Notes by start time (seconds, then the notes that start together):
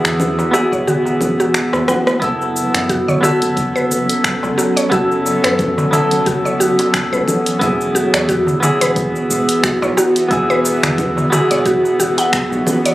Already playing: E3 B3 E4 F#4 G#4
0.05 E2, finger snap, cabasa
0.20 low conga, cabasa
0.39 darbuka ka, cabasa
0.51 B3 E4 F#4, darbuka tek, cabasa
0.55 G#4
0.72 E1 C#5, kick, darbuka ka, cabasa
0.87 F#4, darbuka dum, cabasa
1.05 darbuka ka, cabasa
1.21 E1, kick, low conga, cabasa
1.40 F#4, darbuka ka, cabasa
1.54 finger snap, cabasa
1.73 E2, cross-stick, darbuka tek, cabasa
1.88 F#5, cross-stick, low conga, cabasa
2.07 cross-stick, darbuka ka, cabasa
2.20 F#1 F#3 B3 C#4 E4 A4, kick, closed hi-hat, cabasa
2.42 cabasa
2.56 cabasa
2.74 F#2, finger snap, closed hi-hat, cabasa
2.89 F#4, kick, closed hi-hat, cabasa
3.08 C#5, darbuka dum, cabasa
3.21 B3 E4 F#4, darbuka tek, darbuka dum, cabasa
3.25 A4
3.42 F#1, closed hi-hat, cabasa
3.57 kick, closed hi-hat, cabasa
3.76 B4, cabasa
3.91 F#1, cabasa
4.09 closed hi-hat, cabasa
4.24 finger snap, kick, closed hi-hat, cabasa
4.43 C#2, darbuka ka, darbuka tek, cabasa
4.58 F#4, darbuka tek, cabasa
4.77 C#5, closed hi-hat, cabasa
4.90 F#1 B3 E4 F#4, kick, closed hi-hat, cabasa
4.94 A4
5.12 cabasa
5.26 darbuka tek, cabasa
5.44 F#2 B4, finger snap, closed hi-hat, cabasa
5.59 kick, closed hi-hat, low conga, cabasa
5.78 darbuka ka, darbuka dum, cabasa
5.91 B3 E4 A4, darbuka tek, darbuka dum, cabasa
6.11 F#1, closed hi-hat, darbuka ka, cabasa
6.26 F#4, kick, closed hi-hat, cabasa
6.45 C#5, darbuka ka, cabasa
6.60 F#1 F#4, cabasa
6.79 closed hi-hat, darbuka ka, cabasa
6.94 finger snap, kick, closed hi-hat, cabasa
7.13 C#2 B4, cabasa
7.28 low conga, cabasa
7.46 closed hi-hat, cabasa
7.59 E1 E3 B3 E4 F#4 G#4, kick, closed hi-hat, cabasa
7.81 cabasa
7.95 F#4, cabasa
8.14 E2 C#5, finger snap, closed hi-hat, cabasa
8.29 F#4, kick, closed hi-hat, cabasa
8.47 darbuka dum, cabasa
8.60 B3 E4, darbuka tek, darbuka dum, cabasa
8.64 G#4
8.81 E1 B4, closed hi-hat, cabasa
8.96 kick, closed hi-hat, cabasa
9.16 cabasa
9.29 E1, cabasa
9.49 closed hi-hat, cabasa
9.64 F#4, finger snap, kick, closed hi-hat, cabasa
9.82 B1 C#5, darbuka ka, darbuka tek, cabasa
9.97 F#4, darbuka tek, cabasa
10.16 closed hi-hat, cabasa
10.29 E1 B3 E4, kick, closed hi-hat, cabasa
10.33 G#4
10.50 B4, cabasa
10.64 darbuka tek, cabasa
10.83 E2, finger snap, closed hi-hat, darbuka dum, cabasa
10.98 kick, closed hi-hat, low conga, cabasa
11.17 darbuka ka, darbuka dum, cabasa
11.30 B3 E4 F#4 G#4, darbuka tek, darbuka dum, cabasa
11.51 E1 C#5, closed hi-hat, darbuka ka, cabasa
11.66 F#4, kick, closed hi-hat, cabasa
11.84 darbuka ka, cabasa
11.99 E1 F#4, cabasa
12.18 F#5, closed hi-hat, darbuka ka, cabasa
12.33 finger snap, kick, closed hi-hat, cabasa
12.52 B1, cabasa
12.67 low conga, cabasa
12.85 C#5, closed hi-hat, darbuka ka, cabasa